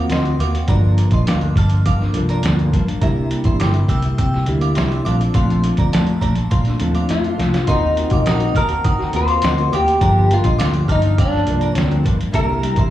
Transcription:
Already playing: A#3 C4 F4 F#4 F5
0.09 D2 D#3 A#3 C4 F#4 D#5 C6, snare, closed hi-hat
0.25 closed hi-hat
0.39 D#2 D#3 A#3 C4 F#4 F5 D6, closed hi-hat
0.54 A#3 C4 F#4, closed hi-hat
0.67 G1 G2 F3 A#3 D4 F4 A4 D5 A#5, kick, closed hi-hat
0.98 closed hi-hat
1.11 A#1 D#5 C6, kick, closed hi-hat
1.27 D2 G2 F3 A#3 D4 F5 D6, snare, closed hi-hat
1.41 closed hi-hat
1.55 G1 G2 F3 A#3 D4 A5 F6, kick, closed hi-hat
1.70 F3 A#3 D4, closed hi-hat
1.86 G2 F5 D6, kick, closed hi-hat
1.99 F3 A#3 D4, snare
2.13 C2 G2 F3 A#3 D4 F4 A4, closed hi-hat
2.29 D5 A#5, closed hi-hat
2.43 D2 G2 F3 A#3 D4, snare, closed hi-hat
2.59 closed hi-hat
2.72 A1 G2 F3 A#3 D4, kick, closed hi-hat
2.87 F3 A#3 D4, closed hi-hat
3.00 C2 C3 G3 A#3 D4 E4 G4 E5 A#5, kick, closed hi-hat
3.31 closed hi-hat
3.44 A1 E5 C6, kick, closed hi-hat
3.60 G1 C3 G3 A#3 E4 G5 D6, snare, closed hi-hat
3.74 closed hi-hat
3.89 C2 C3 G3 A#3 E4 G5 E6, kick, closed hi-hat
4.02 G3 A#3 E4, closed hi-hat
4.18 C3 G5 E6, kick, closed hi-hat
4.32 G3 A#3 E4, snare
4.46 D2 C3 G3 A#3 D4 E4 G4, closed hi-hat
4.61 F5 D6, closed hi-hat
4.75 C2 C3 G3 A#3 E4 E5 C6, snare, closed hi-hat
4.92 closed hi-hat
5.03 A#1 A#2 F3 A3 C4 D4 F4 A4 F5 D6, closed hi-hat
5.20 F3 A3 D4, closed hi-hat
5.34 A#1 A#2 F3 A3 D4 F5 C6, kick, closed hi-hat
5.50 closed hi-hat
5.64 closed hi-hat
5.77 D2 D5 A#5, kick, closed hi-hat
5.92 F2 A#2 F3 A3 D4 D5 A5, snare, closed hi-hat
6.07 closed hi-hat
6.21 A#1 A#2 F3 A3 D4 D5 A#5, kick, closed hi-hat
6.35 F3 A3 D4, closed hi-hat
6.51 A#2 F5 C6, kick, closed hi-hat
6.65 F3 A3 D4, snare, closed hi-hat
6.79 D#2 A#2 F3 A3 C4 D4 F4 A4, closed hi-hat
6.95 F5 D6, closed hi-hat
7.09 F2 A#2 F3 A3 D4 F4, snare, closed hi-hat
7.24 closed hi-hat
7.38 C2 A#2 F3 A3 D4, snare, closed hi-hat
7.52 F3 A3 D4, snare, closed hi-hat
7.67 D#2 D#3 A#3 C4 D#4 F4 F#4 A#4 D#5 C6, kick, closed hi-hat
7.96 D#3 A#3 C4 F#4, closed hi-hat
8.10 C2 A#3 C4 F#4 F5 D6, kick, closed hi-hat
8.25 A#1 D#3 A#3 C4 D#4 F#4 F#5 D#6, snare, closed hi-hat
8.40 closed hi-hat
8.54 D#2 D#3 A#3 C4 F#4 A#4 A5 F6, kick, closed hi-hat
8.69 A#3 C4 F#4, closed hi-hat
8.84 D#3 F#5 D#6, kick, closed hi-hat
8.98 A#3 C4 F#4, snare
9.12 D#2 D#3 A#3 C4 F4 F#4 A#4, closed hi-hat
9.16 C5
9.28 F5 D6, closed hi-hat
9.42 D2 D#3 A#3 C4 F#4 D#5 C6, snare, closed hi-hat
9.57 A#3 C4 F#4, closed hi-hat
9.72 D#2 D#3 A#3 C4 F#4 G4 F5 D6, closed hi-hat
9.86 A#3 C4 F#4, closed hi-hat
10.00 G1 G2 F3 A#3 D4 F4 G#4 D5 A#5, kick, closed hi-hat
10.09 A4
10.29 G2 F3 A#3 D4, closed hi-hat
10.34 F4
10.44 A#1 F3 A#3 D4 D#5 C6, kick, closed hi-hat
10.58 D2 G2 F3 A#3 D4 F4 F5 D6, snare, closed hi-hat
10.73 closed hi-hat
10.87 G1 G2 F3 A#3 D4 A5 F6, kick, closed hi-hat
10.92 D#4
11.02 F3 A#3 D4, closed hi-hat
11.18 G2 D4 F5 D6, kick, closed hi-hat
11.31 F3 A#3 D4, snare
11.45 C2 G2 F3 A#3 D4 F4 A4, closed hi-hat
11.61 D5 A#5, closed hi-hat
11.75 D2 G2 F3 A#3 D4, snare, closed hi-hat
11.79 C4
11.89 F3 A#3 D4, closed hi-hat
12.03 A1 G2 F3 A#3 D4, kick, closed hi-hat
12.18 F3 A#3 D4, closed hi-hat
12.32 C2 C3 G3 A#3 D4 E4 G4 A#4 E5 A#5, kick, closed hi-hat
12.61 C3 G3 A#3 E4, closed hi-hat
12.76 A1 G3 A#3 E4 E5 C6, kick, closed hi-hat

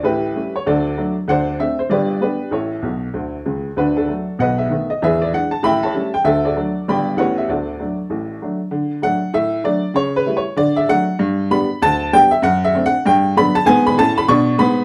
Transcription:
0.03 A1 A2 E4 G4 B4
0.35 G3 A3 C#4
0.56 C#5
0.66 D2 D3 F#4 A4 D5
0.98 F#3 A3 D4
1.28 D2 D3 C5 D5 F#5
1.59 A3 C4 D4 E5
1.79 C5
1.90 G1 G2 G4 B4 D5
2.21 G3 B3 D4 G4 B4
2.51 A1 A2 E4 A4 C#5
2.82 B1 B2
3.14 D2 D3
3.45 C#2 C#3
3.77 D2 D3 D4 F#4 B4
3.97 D4 F#4 A4
4.08 F#3 A3
4.39 B1 B2 B4 D#5 F#5
4.58 E5
4.70 D#3 A3 B3
4.90 D#5
5.02 E2 E3 G#4 B4 E5
5.22 D5
5.33 E3 G#3 D4 F#5
5.51 A5
5.63 A1 A2 E5 G5 B5
5.83 C#5 E5 A5
5.94 G3 A3 C#4
6.14 G5
6.24 D2 D3 A4 E5
6.45 F#4 A4 D5
6.57 F#3 A3 D4
6.88 G1 G2 G3 B3 D4 D5 G5 B5
7.17 A1 A2 G3 B3 C#4 B4 C#5 F#5
7.38 E5
7.49 D2 D3 F#4 A4 D5
7.80 F#3 A3 D4
8.10 A1 A2
8.42 F#3 A3 D4
8.71 D3
9.02 F#3 A3 D4 F#5
9.34 A2 E5
9.64 F#3 A3 D4 D5
9.94 C#3 C#5
10.16 B4
10.26 G3 A3 E4
10.37 C#5
10.56 D3 D5
10.76 E5
10.89 F#3 A3 D4 F#5
11.19 G2
11.50 G3 B3 D4 B5
11.82 D2 A5
12.13 G3 B3 D4 G5
12.31 E5
12.42 F#2 F#5
12.64 E5
12.75 A3 C4 D4
12.86 F#5
13.06 G2 G5
13.37 F#3 B3 D4 B5
13.55 A5
13.65 G#2 B3 G#5
13.87 B5
13.98 A2 C#4 A5
14.18 B5
14.28 B2 D4 C#6
14.58 G#2 B3 B5

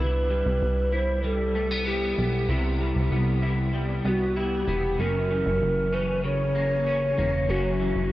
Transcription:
Already playing: B3
0.00 C2 E4 B4
0.30 G3
0.46 C2
0.62 C2
0.92 E4 C5
1.24 G3 A4
1.55 A3
1.71 B3
1.86 E4 G4
2.18 B1 B3
2.49 C2 C3 E4
2.81 G3
2.96 C2
3.11 C2 B3
3.42 E4
3.74 G3
4.05 C2 B3 F#4
4.36 E4 G4
4.67 E1 B3
4.99 F#1 F#2 C#4 A#4
5.30 E3
5.46 F#1
5.62 F#1
5.92 C#4 B4
6.24 C#3 C#5
6.55 A#3
6.87 C#4
7.18 E1 A#3
7.49 F#1 F#2 C#4 F#4
7.80 E3
7.96 F#1

